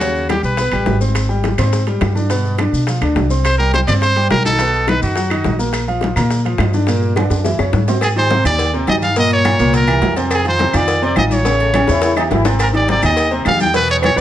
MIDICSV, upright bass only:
0, 0, Header, 1, 2, 480
1, 0, Start_track
1, 0, Tempo, 286123
1, 20, Time_signature, 4, 2, 24, 8
1, 23834, End_track
2, 0, Start_track
2, 0, Title_t, "Upright bass"
2, 0, Program_c, 0, 32
2, 0, Note_on_c, 0, 39, 98
2, 643, Note_off_c, 0, 39, 0
2, 721, Note_on_c, 0, 35, 93
2, 1177, Note_off_c, 0, 35, 0
2, 1208, Note_on_c, 0, 33, 75
2, 1437, Note_off_c, 0, 33, 0
2, 1452, Note_on_c, 0, 32, 96
2, 2566, Note_off_c, 0, 32, 0
2, 2649, Note_on_c, 0, 44, 89
2, 3325, Note_off_c, 0, 44, 0
2, 3379, Note_on_c, 0, 43, 93
2, 4490, Note_off_c, 0, 43, 0
2, 4573, Note_on_c, 0, 47, 88
2, 5024, Note_off_c, 0, 47, 0
2, 5052, Note_on_c, 0, 38, 78
2, 5280, Note_off_c, 0, 38, 0
2, 5293, Note_on_c, 0, 36, 95
2, 6407, Note_off_c, 0, 36, 0
2, 6500, Note_on_c, 0, 43, 95
2, 7171, Note_off_c, 0, 43, 0
2, 7227, Note_on_c, 0, 35, 98
2, 8334, Note_off_c, 0, 35, 0
2, 8422, Note_on_c, 0, 42, 87
2, 9092, Note_off_c, 0, 42, 0
2, 9139, Note_on_c, 0, 34, 95
2, 10249, Note_off_c, 0, 34, 0
2, 10330, Note_on_c, 0, 46, 94
2, 11005, Note_off_c, 0, 46, 0
2, 11047, Note_on_c, 0, 43, 94
2, 12163, Note_off_c, 0, 43, 0
2, 12244, Note_on_c, 0, 42, 90
2, 12698, Note_off_c, 0, 42, 0
2, 12729, Note_on_c, 0, 42, 70
2, 12958, Note_off_c, 0, 42, 0
2, 12965, Note_on_c, 0, 44, 95
2, 14082, Note_off_c, 0, 44, 0
2, 14166, Note_on_c, 0, 39, 93
2, 14842, Note_off_c, 0, 39, 0
2, 14891, Note_on_c, 0, 43, 96
2, 16005, Note_off_c, 0, 43, 0
2, 16092, Note_on_c, 0, 36, 86
2, 16765, Note_off_c, 0, 36, 0
2, 16803, Note_on_c, 0, 41, 95
2, 17920, Note_off_c, 0, 41, 0
2, 18010, Note_on_c, 0, 41, 93
2, 18684, Note_off_c, 0, 41, 0
2, 18728, Note_on_c, 0, 33, 96
2, 19843, Note_off_c, 0, 33, 0
2, 19936, Note_on_c, 0, 40, 88
2, 20607, Note_off_c, 0, 40, 0
2, 20655, Note_on_c, 0, 32, 92
2, 21766, Note_off_c, 0, 32, 0
2, 21856, Note_on_c, 0, 39, 95
2, 22528, Note_off_c, 0, 39, 0
2, 22571, Note_on_c, 0, 40, 97
2, 23685, Note_off_c, 0, 40, 0
2, 23775, Note_on_c, 0, 40, 96
2, 23834, Note_off_c, 0, 40, 0
2, 23834, End_track
0, 0, End_of_file